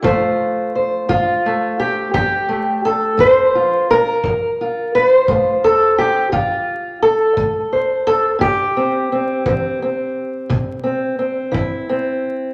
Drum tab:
BD |o--o--o--o--|o--o--o--o--|o--o--o--o--|